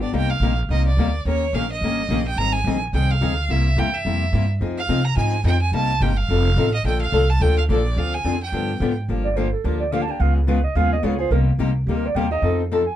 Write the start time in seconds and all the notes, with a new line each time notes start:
0.00 B3 D4 G4 D5
0.13 C2 C3 G3 A#3 D#4 G4 G5
0.30 F5
0.40 A#1 C3 G3 A#3 D#4 G4
0.69 C2 C3 G3 A#3 D#4 G4 D#5
0.87 D5
0.97 D2 C3 G3 A#3 D#4 G4
1.25 D#2 D#3 A#3 C#4 G4 A#4 C#5
1.53 A#1 D#3 A#3 C#4 G4 A#4 F5
1.72 D#5
1.81 G1 D#3 A#3 C#4 G4 A#4
2.09 A#1 D#3 A#3 C#4 G4 A#4
2.28 G5
2.36 G#1 D#3 G3 C4 D#4 G#4 A#5
2.52 G#5
2.64 A#1 D#3 G3 C4 D#4 G#4
2.93 C2 D#3 G3 C4 D#4 G#4 G5
3.10 F5
3.21 D2 D#3 G3 C4 D#4 G#4
3.49 C2 C3 G3 A#3 E4 G4 E5
3.77 E2 C3 G3 A#3 E4 G4 G5
3.94 E5
4.05 F2 C3 G3 A#3 E4 G4
4.33 G2 C3 G3 A#3 E4 G4
4.61 F2 F3 C4 D#4 G#4
4.77 F5
4.89 C3 F3 C4 D#4 G#4
5.05 A#5
5.16 G#2 F3 C4 D#4 G#4 G#5
5.44 F2 F3 C4 D#4 G#4 G5
5.62 G#5
5.72 C2 C3 G3 A#3 D#4 G4 A5
6.00 G1 C3 G3 A#3 D#4 G4 G5
6.16 F5
6.29 F1 F3 C4 D#4 A4
6.56 A1 F3 C4 D#4 A4
6.74 D#5
6.84 A#1 D3 F3 A#3 D4 A4 G5
7.01 F5
7.12 C2 D3 F3 A#3 D4 A4
7.30 A5
7.40 D2 D3 F3 A#3 D4 A4 G5
7.58 F5
7.69 A#1 D3 F3 A#3 D4 A4 D5
7.96 D2 D3 F3 C4 D4 G#4 F5
8.14 G#5
8.24 F2 D3 F3 C4 D4 G#4
8.43 G5
8.52 G2 D3 F3 B3 D4 G4
8.80 G#2 D3 F3 B3 D4 G4
9.09 G1 D3 F3 A#3 D4 G4
9.24 D5
9.36 D3 F3 A#3 D4 G4 C5
9.52 A4
9.64 D2 D3 F3 A#3 D4 G4 A#4
9.80 D5
9.92 D3 F3 A#3 D4 G4 F5
10.02 A5
10.07 A#3 D4 G4 G5
10.20 C#2 C#3 G#3 B3 F4 G#4 F5
10.36 G#4
10.47 C#3 G#3 B3 F4 G#4 B4
10.64 D#5
10.75 D#2 C#3 G#3 B3 F4 G#4 F5
10.93 D#5
11.03 C#2 C#3 G#3 B3 F4 G#4 C#5
11.19 B3 F4 G#4 C5
11.31 C2 C3 G3 A#3 D#4 G4 A#4
11.59 C2 C3 G3 A#3 D#4 G4
11.87 D2 C3 G3 A#3 D#4 G4
11.97 A#4
12.06 D5
12.15 D#2 C3 G3 A#3 D#4 G4 G5
12.31 A#3 D#4 G4 D#5
12.42 F2 F3 C4 D#4 A4
12.72 F3 C4 D#4 A4
12.87 G#5